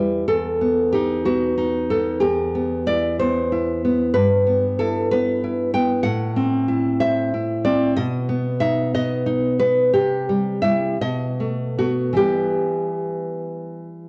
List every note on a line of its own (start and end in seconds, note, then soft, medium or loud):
0.00 0.23 E2 soft
0.00 0.27 G3 soft
0.00 0.28 E4 soft
0.00 0.23 B4 medium
0.28 2.18 E2 soft
0.28 0.90 A4 medium
0.61 1.25 B3 soft
0.92 1.56 D#4 soft
0.92 1.24 G4 medium
1.25 1.90 B3 soft
1.25 1.87 F#4 medium
1.58 2.22 D#4 soft
1.90 2.23 B3 soft
1.90 2.20 A4 soft
2.20 4.10 E2 soft
2.20 2.84 G4 medium
2.55 3.20 B3 soft
2.87 3.51 E4 soft
2.87 3.18 D5 medium
3.20 3.83 B3 soft
3.20 4.11 C5 medium
3.52 4.15 E4 soft
3.85 4.16 B3 soft
4.14 6.01 G2 soft
4.14 4.76 B4 medium
4.46 5.12 B3 soft
4.79 5.43 E4 soft
4.79 5.09 A4 medium
5.11 5.74 B3 soft
5.11 5.71 B4 medium
5.44 6.05 E4 soft
5.74 6.05 B3 soft
5.74 6.03 G5 medium
6.03 7.92 A2 soft
6.03 6.95 F#5 medium
6.36 7.32 C4 soft
6.68 7.33 E4 soft
7.00 7.97 C5 soft
7.00 7.62 E5 medium
7.34 7.97 E4 soft
7.65 7.96 C4 soft
7.65 7.95 D5 medium
7.97 9.90 B2 soft
7.97 8.58 D#5 medium
8.29 8.93 B3 soft
8.60 9.25 D#4 soft
8.60 8.92 E5 medium
8.94 9.59 B3 soft
8.94 9.25 D#5 medium
9.26 9.94 D#4 soft
9.59 9.93 B3 soft
9.59 9.92 B4 medium
9.93 10.97 C3 soft
9.93 10.60 G4 medium
10.29 10.62 G3 soft
10.62 10.96 G3 soft
10.62 10.96 E4 soft
10.62 10.97 E5 medium
11.01 12.15 B2 soft
11.01 11.75 D#5 medium
11.40 11.78 A3 soft
11.79 12.15 A3 soft
11.79 12.15 B3 soft
11.79 12.16 F#4 soft
12.13 14.09 E3 soft
12.13 14.09 G3 soft
12.13 14.09 B3 soft
12.13 14.09 G4 medium